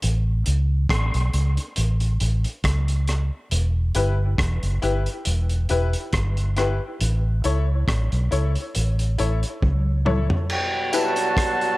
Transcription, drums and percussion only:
0.02 closed hi-hat medium
0.46 closed hi-hat medium
0.89 kick loud
0.89 cross-stick loud
0.89 closed hi-hat medium
1.14 closed hi-hat soft
1.33 closed hi-hat medium
1.57 closed hi-hat soft
1.76 closed hi-hat medium
2.00 closed hi-hat soft
2.20 closed hi-hat medium
2.44 closed hi-hat soft
2.64 kick loud
2.64 cross-stick medium
2.64 closed hi-hat medium
2.88 closed hi-hat medium
3.08 cross-stick medium
3.08 closed hi-hat medium
3.51 closed hi-hat medium
3.95 closed hi-hat medium
4.38 kick loud
4.38 cross-stick loud
4.38 closed hi-hat medium
4.63 closed hi-hat soft
4.82 closed hi-hat medium
5.06 closed hi-hat soft
5.25 closed hi-hat loud
5.49 closed hi-hat soft
5.69 closed hi-hat medium
5.93 closed hi-hat medium
6.13 kick loud
6.13 cross-stick loud
6.13 closed hi-hat medium
6.37 closed hi-hat medium
6.57 cross-stick medium
6.57 closed hi-hat medium
7.00 closed hi-hat medium
7.44 closed hi-hat medium
7.88 kick loud
7.88 cross-stick loud
7.88 closed hi-hat medium
8.12 closed hi-hat soft
8.32 closed hi-hat medium
8.55 closed hi-hat medium
8.75 closed hi-hat medium
8.99 closed hi-hat soft
9.19 closed hi-hat medium
9.43 closed hi-hat soft
9.62 kick loud
9.62 high tom soft
10.06 mid tom medium
10.30 floor tom medium
10.50 crash loud
10.93 closed hi-hat medium
10.93 tambourine medium
11.16 closed hi-hat medium
11.37 kick loud
11.37 cross-stick loud
11.37 closed hi-hat medium
11.61 closed hi-hat soft

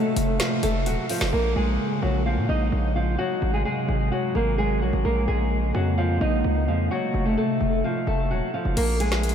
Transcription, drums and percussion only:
0.17 closed hi-hat medium
0.40 snare loud
0.40 closed hi-hat medium
0.63 closed hi-hat medium
0.86 closed hi-hat medium
1.09 open hi-hat medium
1.21 snare loud
8.77 closed hi-hat medium
8.77 crash loud
9.00 closed hi-hat medium
9.12 snare medium
9.23 closed hi-hat soft
9.29 closed hi-hat medium

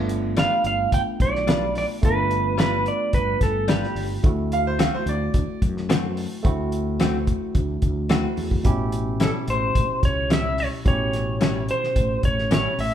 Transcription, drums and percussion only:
0.09 closed hi-hat medium
0.37 snare loud
0.37 closed hi-hat medium
0.64 closed hi-hat medium
0.92 kick medium
0.92 closed hi-hat medium
1.20 kick medium
1.20 closed hi-hat medium
1.35 snare soft
1.48 snare loud
1.48 closed hi-hat medium
1.75 snare soft
1.75 open hi-hat medium
2.03 kick loud
2.03 closed hi-hat medium
2.31 closed hi-hat medium
2.59 snare loud
2.59 closed hi-hat medium
2.86 closed hi-hat medium
3.13 kick medium
3.13 closed hi-hat medium
3.41 kick medium
3.41 snare soft
3.41 closed hi-hat medium
3.68 snare loud
3.68 closed hi-hat medium
3.84 snare soft
3.96 open hi-hat medium
4.24 kick loud
4.24 closed hi-hat medium
4.52 closed hi-hat medium
4.79 snare loud
4.79 closed hi-hat loud
5.07 closed hi-hat medium
5.34 kick medium
5.34 closed hi-hat medium
5.62 kick medium
5.62 closed hi-hat medium
5.77 snare soft
5.90 snare loud
5.90 closed hi-hat medium
6.17 open hi-hat medium
6.45 kick loud
6.45 closed hi-hat medium
6.72 closed hi-hat medium
7.00 snare loud
7.00 closed hi-hat medium
7.27 kick medium
7.27 closed hi-hat medium
7.55 kick medium
7.55 closed hi-hat medium
7.82 kick medium
7.82 closed hi-hat medium
8.09 snare loud
8.09 closed hi-hat medium
8.37 open hi-hat medium
8.51 kick medium
8.65 kick loud
8.65 closed hi-hat medium
8.92 closed hi-hat medium
9.20 snare loud
9.20 closed hi-hat medium
9.48 closed hi-hat medium
9.75 kick medium
9.75 closed hi-hat medium
10.03 kick medium
10.03 closed hi-hat medium
10.30 snare loud
10.30 closed hi-hat medium
10.58 open hi-hat medium
10.86 kick loud
10.86 closed hi-hat medium
11.13 snare soft
11.13 closed hi-hat medium
11.41 snare loud
11.41 closed hi-hat medium
11.69 closed hi-hat medium
11.84 snare soft
11.96 kick medium
11.96 closed hi-hat medium
12.23 kick medium
12.23 closed hi-hat medium
12.39 snare soft
12.51 snare loud
12.51 closed hi-hat medium
12.79 open hi-hat medium

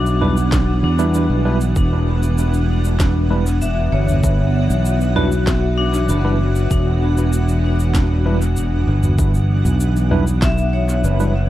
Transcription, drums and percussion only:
0.06 cabasa soft
0.21 mid tom medium
0.37 cabasa soft
0.52 kick loud
0.52 snare medium
0.52 cabasa soft
0.99 cabasa soft
1.14 cabasa medium
1.61 cabasa soft
1.76 kick loud
1.76 cabasa soft
2.23 cabasa soft
2.38 cabasa soft
2.54 cabasa soft
2.85 cabasa soft
3.00 kick loud
3.00 snare medium
3.00 cabasa soft
3.46 cabasa soft
3.62 mid tom medium
3.62 cabasa soft
4.08 mid tom medium
4.08 cabasa soft
4.24 kick loud
4.24 cabasa soft
4.70 cabasa soft
4.85 cabasa medium
5.01 cabasa soft
5.16 mid tom medium
5.32 cabasa soft
5.47 kick loud
5.47 snare medium
5.47 cabasa medium
5.94 cabasa soft
6.09 cabasa medium
6.56 cabasa soft
6.71 kick loud
6.71 cabasa medium
7.17 cabasa soft
7.33 cabasa medium
7.49 cabasa soft
7.80 cabasa soft
7.95 kick loud
7.95 snare medium
7.95 cabasa medium
8.42 cabasa soft
8.57 mid tom medium
8.57 cabasa soft
9.03 mid tom medium
9.03 cabasa soft
9.19 kick loud
9.19 cabasa medium
9.34 cabasa soft
9.65 mid tom medium
9.65 cabasa soft
9.80 cabasa medium
9.96 cabasa soft
10.11 mid tom medium
10.27 cabasa soft
10.42 kick loud
10.42 snare medium
10.42 cabasa medium
10.58 cabasa soft
10.89 cabasa soft
11.04 cabasa medium
11.20 cabasa soft

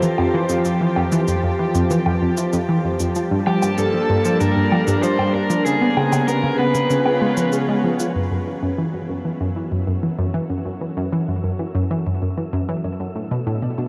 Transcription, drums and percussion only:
0.03 shaker soft
0.18 low woodblock soft
0.49 shaker medium
0.65 shaker soft
0.96 low woodblock medium
1.12 shaker medium
1.28 shaker medium
1.75 shaker medium
1.90 shaker medium
2.06 low woodblock soft
2.37 shaker medium
2.53 shaker soft
3.00 shaker medium
3.15 shaker soft
3.47 low woodblock medium
3.62 low woodblock soft
3.62 shaker medium
3.78 shaker medium
4.25 shaker medium
4.41 shaker soft
4.72 low woodblock medium
4.88 shaker medium
5.03 shaker soft
5.19 low woodblock medium
5.50 shaker medium
5.66 shaker medium
5.97 low woodblock medium
6.13 low woodblock medium
6.13 shaker medium
6.28 shaker medium
6.75 shaker medium
6.90 shaker soft
7.06 low woodblock medium
7.37 shaker medium
7.53 shaker medium
8.00 shaker medium

